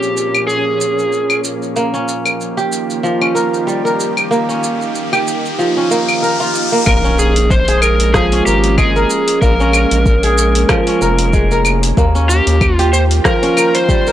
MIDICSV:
0, 0, Header, 1, 8, 480
1, 0, Start_track
1, 0, Tempo, 638298
1, 1324, Time_signature, 4, 2, 24, 8
1, 10619, End_track
2, 0, Start_track
2, 0, Title_t, "Electric slide guitar"
2, 0, Program_c, 0, 29
2, 0, Note_on_c, 0, 67, 78
2, 326, Note_off_c, 0, 67, 0
2, 356, Note_on_c, 0, 68, 72
2, 1050, Note_off_c, 0, 68, 0
2, 5168, Note_on_c, 0, 70, 106
2, 5389, Note_off_c, 0, 70, 0
2, 5405, Note_on_c, 0, 68, 87
2, 5643, Note_on_c, 0, 72, 106
2, 5652, Note_off_c, 0, 68, 0
2, 5882, Note_off_c, 0, 72, 0
2, 5885, Note_on_c, 0, 70, 93
2, 6108, Note_off_c, 0, 70, 0
2, 6119, Note_on_c, 0, 68, 96
2, 6358, Note_off_c, 0, 68, 0
2, 6361, Note_on_c, 0, 67, 88
2, 6600, Note_off_c, 0, 67, 0
2, 6603, Note_on_c, 0, 68, 99
2, 7054, Note_off_c, 0, 68, 0
2, 7080, Note_on_c, 0, 70, 99
2, 8732, Note_off_c, 0, 70, 0
2, 9243, Note_on_c, 0, 67, 93
2, 9589, Note_off_c, 0, 67, 0
2, 9589, Note_on_c, 0, 65, 93
2, 9694, Note_off_c, 0, 65, 0
2, 9723, Note_on_c, 0, 72, 100
2, 9788, Note_off_c, 0, 72, 0
2, 9966, Note_on_c, 0, 70, 104
2, 10339, Note_on_c, 0, 72, 98
2, 10350, Note_off_c, 0, 70, 0
2, 10619, Note_off_c, 0, 72, 0
2, 10619, End_track
3, 0, Start_track
3, 0, Title_t, "Kora"
3, 0, Program_c, 1, 46
3, 1325, Note_on_c, 1, 58, 75
3, 1456, Note_on_c, 1, 61, 68
3, 1935, Note_on_c, 1, 67, 88
3, 2281, Note_on_c, 1, 53, 73
3, 2413, Note_off_c, 1, 61, 0
3, 2416, Note_on_c, 1, 61, 65
3, 2518, Note_on_c, 1, 70, 62
3, 2760, Note_on_c, 1, 55, 68
3, 2776, Note_off_c, 1, 58, 0
3, 2891, Note_off_c, 1, 70, 0
3, 2894, Note_on_c, 1, 70, 69
3, 2997, Note_off_c, 1, 67, 0
3, 3239, Note_on_c, 1, 58, 71
3, 3372, Note_off_c, 1, 61, 0
3, 3375, Note_on_c, 1, 61, 70
3, 3851, Note_off_c, 1, 70, 0
3, 3855, Note_on_c, 1, 67, 90
3, 4041, Note_off_c, 1, 53, 0
3, 4201, Note_on_c, 1, 53, 73
3, 4335, Note_off_c, 1, 61, 0
3, 4338, Note_on_c, 1, 61, 67
3, 4440, Note_off_c, 1, 58, 0
3, 4443, Note_on_c, 1, 58, 86
3, 4519, Note_off_c, 1, 55, 0
3, 4679, Note_on_c, 1, 70, 72
3, 4812, Note_on_c, 1, 65, 91
3, 4917, Note_off_c, 1, 67, 0
3, 5052, Note_off_c, 1, 58, 0
3, 5055, Note_on_c, 1, 58, 71
3, 5157, Note_off_c, 1, 58, 0
3, 5160, Note_on_c, 1, 58, 84
3, 5202, Note_off_c, 1, 53, 0
3, 5292, Note_off_c, 1, 61, 0
3, 5295, Note_on_c, 1, 61, 76
3, 5636, Note_off_c, 1, 70, 0
3, 5778, Note_on_c, 1, 68, 104
3, 5950, Note_off_c, 1, 65, 0
3, 6125, Note_on_c, 1, 53, 81
3, 6256, Note_off_c, 1, 61, 0
3, 6259, Note_on_c, 1, 61, 76
3, 6365, Note_on_c, 1, 70, 70
3, 6604, Note_on_c, 1, 56, 82
3, 6611, Note_off_c, 1, 58, 0
3, 6735, Note_off_c, 1, 70, 0
3, 6738, Note_on_c, 1, 70, 81
3, 6804, Note_off_c, 1, 68, 0
3, 7084, Note_on_c, 1, 58, 82
3, 7216, Note_off_c, 1, 61, 0
3, 7219, Note_on_c, 1, 61, 75
3, 7695, Note_off_c, 1, 70, 0
3, 7698, Note_on_c, 1, 68, 98
3, 7884, Note_off_c, 1, 53, 0
3, 8044, Note_on_c, 1, 53, 83
3, 8175, Note_off_c, 1, 61, 0
3, 8178, Note_on_c, 1, 61, 74
3, 8284, Note_on_c, 1, 70, 76
3, 8364, Note_off_c, 1, 56, 0
3, 8523, Note_on_c, 1, 56, 82
3, 8535, Note_off_c, 1, 58, 0
3, 8656, Note_off_c, 1, 70, 0
3, 8659, Note_on_c, 1, 70, 80
3, 8724, Note_off_c, 1, 68, 0
3, 9004, Note_on_c, 1, 58, 84
3, 9042, Note_off_c, 1, 53, 0
3, 9042, Note_off_c, 1, 56, 0
3, 9133, Note_off_c, 1, 61, 0
3, 9136, Note_on_c, 1, 61, 81
3, 9616, Note_off_c, 1, 70, 0
3, 9619, Note_on_c, 1, 67, 104
3, 9963, Note_on_c, 1, 53, 83
3, 10093, Note_off_c, 1, 61, 0
3, 10096, Note_on_c, 1, 61, 75
3, 10205, Note_on_c, 1, 70, 72
3, 10445, Note_on_c, 1, 55, 81
3, 10455, Note_off_c, 1, 58, 0
3, 10580, Note_off_c, 1, 70, 0
3, 10583, Note_on_c, 1, 70, 73
3, 10619, Note_off_c, 1, 53, 0
3, 10619, Note_off_c, 1, 55, 0
3, 10619, Note_off_c, 1, 61, 0
3, 10619, Note_off_c, 1, 67, 0
3, 10619, Note_off_c, 1, 70, 0
3, 10619, End_track
4, 0, Start_track
4, 0, Title_t, "Synth drone"
4, 0, Program_c, 2, 95
4, 0, Note_on_c, 2, 46, 78
4, 0, Note_on_c, 2, 53, 72
4, 0, Note_on_c, 2, 58, 69
4, 0, Note_on_c, 2, 61, 82
4, 1293, Note_off_c, 2, 46, 0
4, 1293, Note_off_c, 2, 53, 0
4, 1293, Note_off_c, 2, 61, 0
4, 1307, Note_off_c, 2, 58, 0
4, 1325, Note_on_c, 2, 51, 78
4, 1326, Note_on_c, 2, 58, 74
4, 1326, Note_on_c, 2, 65, 73
4, 1328, Note_on_c, 2, 67, 90
4, 3226, Note_off_c, 2, 65, 0
4, 3247, Note_on_c, 2, 63, 67
4, 5134, Note_off_c, 2, 51, 0
4, 5135, Note_off_c, 2, 58, 0
4, 5136, Note_off_c, 2, 67, 0
4, 5146, Note_off_c, 2, 63, 0
4, 5163, Note_on_c, 2, 58, 73
4, 5166, Note_on_c, 2, 61, 95
4, 5167, Note_on_c, 2, 56, 81
4, 8975, Note_off_c, 2, 61, 0
4, 8976, Note_off_c, 2, 56, 0
4, 9005, Note_on_c, 2, 51, 85
4, 9007, Note_on_c, 2, 65, 81
4, 9007, Note_on_c, 2, 79, 95
4, 10619, Note_off_c, 2, 51, 0
4, 10619, Note_off_c, 2, 58, 0
4, 10619, Note_off_c, 2, 65, 0
4, 10619, Note_off_c, 2, 79, 0
4, 10619, End_track
5, 0, Start_track
5, 0, Title_t, "Analog synth bass"
5, 0, Program_c, 3, 38
5, 5164, Note_on_c, 3, 34, 93
5, 6329, Note_off_c, 3, 34, 0
5, 6368, Note_on_c, 3, 32, 85
5, 6811, Note_off_c, 3, 32, 0
5, 7082, Note_on_c, 3, 34, 97
5, 7413, Note_off_c, 3, 34, 0
5, 7458, Note_on_c, 3, 34, 98
5, 8009, Note_off_c, 3, 34, 0
5, 8285, Note_on_c, 3, 29, 98
5, 8970, Note_off_c, 3, 29, 0
5, 9003, Note_on_c, 3, 39, 96
5, 9334, Note_off_c, 3, 39, 0
5, 9378, Note_on_c, 3, 39, 99
5, 9929, Note_off_c, 3, 39, 0
5, 10619, End_track
6, 0, Start_track
6, 0, Title_t, "Impact"
6, 0, Program_c, 4, 103
6, 5164, Note_on_c, 4, 60, 77
6, 7084, Note_off_c, 4, 60, 0
6, 10619, End_track
7, 0, Start_track
7, 0, Title_t, "Riser"
7, 0, Program_c, 5, 103
7, 1325, Note_on_c, 5, 60, 64
7, 5164, Note_off_c, 5, 60, 0
7, 10619, End_track
8, 0, Start_track
8, 0, Title_t, "Drums"
8, 22, Note_on_c, 9, 82, 28
8, 97, Note_off_c, 9, 82, 0
8, 129, Note_on_c, 9, 82, 74
8, 205, Note_off_c, 9, 82, 0
8, 260, Note_on_c, 9, 75, 62
8, 264, Note_on_c, 9, 82, 28
8, 335, Note_off_c, 9, 75, 0
8, 339, Note_off_c, 9, 82, 0
8, 371, Note_on_c, 9, 82, 39
8, 446, Note_off_c, 9, 82, 0
8, 608, Note_on_c, 9, 82, 75
8, 683, Note_off_c, 9, 82, 0
8, 742, Note_on_c, 9, 82, 29
8, 817, Note_off_c, 9, 82, 0
8, 847, Note_on_c, 9, 82, 42
8, 922, Note_off_c, 9, 82, 0
8, 976, Note_on_c, 9, 75, 70
8, 980, Note_on_c, 9, 82, 28
8, 1051, Note_off_c, 9, 75, 0
8, 1055, Note_off_c, 9, 82, 0
8, 1085, Note_on_c, 9, 82, 70
8, 1160, Note_off_c, 9, 82, 0
8, 1221, Note_on_c, 9, 82, 30
8, 1297, Note_off_c, 9, 82, 0
8, 1326, Note_on_c, 9, 82, 39
8, 1401, Note_off_c, 9, 82, 0
8, 1461, Note_on_c, 9, 82, 28
8, 1536, Note_off_c, 9, 82, 0
8, 1567, Note_on_c, 9, 82, 73
8, 1642, Note_off_c, 9, 82, 0
8, 1696, Note_on_c, 9, 75, 64
8, 1700, Note_on_c, 9, 82, 32
8, 1771, Note_off_c, 9, 75, 0
8, 1775, Note_off_c, 9, 82, 0
8, 1810, Note_on_c, 9, 82, 39
8, 1885, Note_off_c, 9, 82, 0
8, 1942, Note_on_c, 9, 82, 31
8, 2017, Note_off_c, 9, 82, 0
8, 2048, Note_on_c, 9, 82, 77
8, 2123, Note_off_c, 9, 82, 0
8, 2183, Note_on_c, 9, 82, 32
8, 2258, Note_off_c, 9, 82, 0
8, 2290, Note_on_c, 9, 82, 37
8, 2365, Note_off_c, 9, 82, 0
8, 2418, Note_on_c, 9, 75, 66
8, 2493, Note_off_c, 9, 75, 0
8, 2528, Note_on_c, 9, 82, 69
8, 2604, Note_off_c, 9, 82, 0
8, 2662, Note_on_c, 9, 82, 30
8, 2738, Note_off_c, 9, 82, 0
8, 2769, Note_on_c, 9, 82, 41
8, 2844, Note_off_c, 9, 82, 0
8, 2906, Note_on_c, 9, 82, 31
8, 2981, Note_off_c, 9, 82, 0
8, 3008, Note_on_c, 9, 82, 67
8, 3083, Note_off_c, 9, 82, 0
8, 3137, Note_on_c, 9, 75, 64
8, 3141, Note_on_c, 9, 82, 31
8, 3212, Note_off_c, 9, 75, 0
8, 3216, Note_off_c, 9, 82, 0
8, 3248, Note_on_c, 9, 82, 40
8, 3323, Note_off_c, 9, 82, 0
8, 3382, Note_on_c, 9, 82, 28
8, 3457, Note_off_c, 9, 82, 0
8, 3486, Note_on_c, 9, 82, 68
8, 3561, Note_off_c, 9, 82, 0
8, 3620, Note_on_c, 9, 82, 31
8, 3695, Note_off_c, 9, 82, 0
8, 3724, Note_on_c, 9, 82, 41
8, 3799, Note_off_c, 9, 82, 0
8, 3857, Note_on_c, 9, 75, 71
8, 3861, Note_on_c, 9, 82, 30
8, 3932, Note_off_c, 9, 75, 0
8, 3936, Note_off_c, 9, 82, 0
8, 3967, Note_on_c, 9, 82, 75
8, 4042, Note_off_c, 9, 82, 0
8, 4101, Note_on_c, 9, 82, 31
8, 4176, Note_off_c, 9, 82, 0
8, 4207, Note_on_c, 9, 82, 39
8, 4282, Note_off_c, 9, 82, 0
8, 4446, Note_on_c, 9, 82, 68
8, 4521, Note_off_c, 9, 82, 0
8, 4576, Note_on_c, 9, 75, 65
8, 4580, Note_on_c, 9, 82, 31
8, 4651, Note_off_c, 9, 75, 0
8, 4655, Note_off_c, 9, 82, 0
8, 4689, Note_on_c, 9, 82, 41
8, 4764, Note_off_c, 9, 82, 0
8, 4823, Note_on_c, 9, 82, 30
8, 4898, Note_off_c, 9, 82, 0
8, 4926, Note_on_c, 9, 82, 71
8, 5001, Note_off_c, 9, 82, 0
8, 5060, Note_on_c, 9, 82, 31
8, 5135, Note_off_c, 9, 82, 0
8, 5163, Note_on_c, 9, 75, 78
8, 5164, Note_on_c, 9, 36, 104
8, 5167, Note_on_c, 9, 82, 41
8, 5238, Note_off_c, 9, 75, 0
8, 5239, Note_off_c, 9, 36, 0
8, 5242, Note_off_c, 9, 82, 0
8, 5302, Note_on_c, 9, 82, 30
8, 5377, Note_off_c, 9, 82, 0
8, 5406, Note_on_c, 9, 82, 83
8, 5481, Note_off_c, 9, 82, 0
8, 5535, Note_on_c, 9, 46, 57
8, 5540, Note_on_c, 9, 82, 33
8, 5611, Note_off_c, 9, 46, 0
8, 5615, Note_off_c, 9, 82, 0
8, 5643, Note_on_c, 9, 36, 100
8, 5647, Note_on_c, 9, 82, 42
8, 5719, Note_off_c, 9, 36, 0
8, 5722, Note_off_c, 9, 82, 0
8, 5775, Note_on_c, 9, 46, 49
8, 5779, Note_on_c, 9, 82, 32
8, 5850, Note_off_c, 9, 46, 0
8, 5854, Note_off_c, 9, 82, 0
8, 5880, Note_on_c, 9, 75, 79
8, 5884, Note_on_c, 9, 82, 88
8, 5955, Note_off_c, 9, 75, 0
8, 5959, Note_off_c, 9, 82, 0
8, 6014, Note_on_c, 9, 46, 59
8, 6019, Note_on_c, 9, 82, 33
8, 6090, Note_off_c, 9, 46, 0
8, 6094, Note_off_c, 9, 82, 0
8, 6122, Note_on_c, 9, 37, 76
8, 6123, Note_on_c, 9, 36, 107
8, 6126, Note_on_c, 9, 82, 42
8, 6197, Note_off_c, 9, 37, 0
8, 6198, Note_off_c, 9, 36, 0
8, 6201, Note_off_c, 9, 82, 0
8, 6257, Note_on_c, 9, 46, 45
8, 6332, Note_off_c, 9, 46, 0
8, 6367, Note_on_c, 9, 82, 77
8, 6443, Note_off_c, 9, 82, 0
8, 6495, Note_on_c, 9, 46, 55
8, 6499, Note_on_c, 9, 82, 30
8, 6570, Note_off_c, 9, 46, 0
8, 6574, Note_off_c, 9, 82, 0
8, 6601, Note_on_c, 9, 75, 79
8, 6603, Note_on_c, 9, 36, 110
8, 6605, Note_on_c, 9, 82, 47
8, 6677, Note_off_c, 9, 75, 0
8, 6678, Note_off_c, 9, 36, 0
8, 6681, Note_off_c, 9, 82, 0
8, 6739, Note_on_c, 9, 82, 30
8, 6815, Note_off_c, 9, 82, 0
8, 6843, Note_on_c, 9, 82, 81
8, 6919, Note_off_c, 9, 82, 0
8, 6976, Note_on_c, 9, 46, 59
8, 6980, Note_on_c, 9, 82, 32
8, 7051, Note_off_c, 9, 46, 0
8, 7055, Note_off_c, 9, 82, 0
8, 7082, Note_on_c, 9, 36, 104
8, 7086, Note_on_c, 9, 82, 42
8, 7157, Note_off_c, 9, 36, 0
8, 7161, Note_off_c, 9, 82, 0
8, 7221, Note_on_c, 9, 82, 31
8, 7296, Note_off_c, 9, 82, 0
8, 7320, Note_on_c, 9, 75, 81
8, 7324, Note_on_c, 9, 82, 78
8, 7395, Note_off_c, 9, 75, 0
8, 7399, Note_off_c, 9, 82, 0
8, 7455, Note_on_c, 9, 46, 53
8, 7459, Note_on_c, 9, 82, 35
8, 7530, Note_off_c, 9, 46, 0
8, 7535, Note_off_c, 9, 82, 0
8, 7563, Note_on_c, 9, 36, 104
8, 7565, Note_on_c, 9, 82, 47
8, 7638, Note_off_c, 9, 36, 0
8, 7641, Note_off_c, 9, 82, 0
8, 7694, Note_on_c, 9, 46, 44
8, 7699, Note_on_c, 9, 82, 32
8, 7770, Note_off_c, 9, 46, 0
8, 7774, Note_off_c, 9, 82, 0
8, 7806, Note_on_c, 9, 82, 88
8, 7881, Note_off_c, 9, 82, 0
8, 7935, Note_on_c, 9, 46, 59
8, 7939, Note_on_c, 9, 82, 34
8, 8010, Note_off_c, 9, 46, 0
8, 8014, Note_off_c, 9, 82, 0
8, 8038, Note_on_c, 9, 37, 78
8, 8038, Note_on_c, 9, 75, 74
8, 8042, Note_on_c, 9, 36, 105
8, 8042, Note_on_c, 9, 82, 45
8, 8114, Note_off_c, 9, 37, 0
8, 8114, Note_off_c, 9, 75, 0
8, 8118, Note_off_c, 9, 36, 0
8, 8118, Note_off_c, 9, 82, 0
8, 8174, Note_on_c, 9, 46, 45
8, 8249, Note_off_c, 9, 46, 0
8, 8284, Note_on_c, 9, 82, 84
8, 8359, Note_off_c, 9, 82, 0
8, 8411, Note_on_c, 9, 46, 56
8, 8415, Note_on_c, 9, 82, 34
8, 8486, Note_off_c, 9, 46, 0
8, 8491, Note_off_c, 9, 82, 0
8, 8522, Note_on_c, 9, 36, 116
8, 8522, Note_on_c, 9, 82, 51
8, 8597, Note_off_c, 9, 36, 0
8, 8598, Note_off_c, 9, 82, 0
8, 8658, Note_on_c, 9, 82, 33
8, 8734, Note_off_c, 9, 82, 0
8, 8759, Note_on_c, 9, 75, 74
8, 8763, Note_on_c, 9, 82, 81
8, 8834, Note_off_c, 9, 75, 0
8, 8839, Note_off_c, 9, 82, 0
8, 8897, Note_on_c, 9, 46, 57
8, 8901, Note_on_c, 9, 82, 36
8, 8972, Note_off_c, 9, 46, 0
8, 8976, Note_off_c, 9, 82, 0
8, 9003, Note_on_c, 9, 36, 112
8, 9006, Note_on_c, 9, 82, 44
8, 9078, Note_off_c, 9, 36, 0
8, 9082, Note_off_c, 9, 82, 0
8, 9141, Note_on_c, 9, 82, 32
8, 9216, Note_off_c, 9, 82, 0
8, 9248, Note_on_c, 9, 82, 89
8, 9323, Note_off_c, 9, 82, 0
8, 9378, Note_on_c, 9, 46, 51
8, 9382, Note_on_c, 9, 82, 37
8, 9453, Note_off_c, 9, 46, 0
8, 9457, Note_off_c, 9, 82, 0
8, 9483, Note_on_c, 9, 36, 117
8, 9483, Note_on_c, 9, 75, 80
8, 9487, Note_on_c, 9, 82, 44
8, 9558, Note_off_c, 9, 75, 0
8, 9559, Note_off_c, 9, 36, 0
8, 9562, Note_off_c, 9, 82, 0
8, 9618, Note_on_c, 9, 46, 43
8, 9622, Note_on_c, 9, 82, 33
8, 9693, Note_off_c, 9, 46, 0
8, 9697, Note_off_c, 9, 82, 0
8, 9728, Note_on_c, 9, 82, 88
8, 9804, Note_off_c, 9, 82, 0
8, 9858, Note_on_c, 9, 46, 55
8, 9862, Note_on_c, 9, 82, 36
8, 9933, Note_off_c, 9, 46, 0
8, 9937, Note_off_c, 9, 82, 0
8, 9963, Note_on_c, 9, 37, 80
8, 9964, Note_on_c, 9, 36, 110
8, 9968, Note_on_c, 9, 82, 45
8, 10039, Note_off_c, 9, 36, 0
8, 10039, Note_off_c, 9, 37, 0
8, 10043, Note_off_c, 9, 82, 0
8, 10099, Note_on_c, 9, 46, 43
8, 10174, Note_off_c, 9, 46, 0
8, 10204, Note_on_c, 9, 75, 76
8, 10208, Note_on_c, 9, 82, 89
8, 10279, Note_off_c, 9, 75, 0
8, 10284, Note_off_c, 9, 82, 0
8, 10338, Note_on_c, 9, 46, 56
8, 10342, Note_on_c, 9, 82, 32
8, 10413, Note_off_c, 9, 46, 0
8, 10417, Note_off_c, 9, 82, 0
8, 10444, Note_on_c, 9, 36, 116
8, 10447, Note_on_c, 9, 82, 49
8, 10519, Note_off_c, 9, 36, 0
8, 10523, Note_off_c, 9, 82, 0
8, 10581, Note_on_c, 9, 82, 36
8, 10619, Note_off_c, 9, 82, 0
8, 10619, End_track
0, 0, End_of_file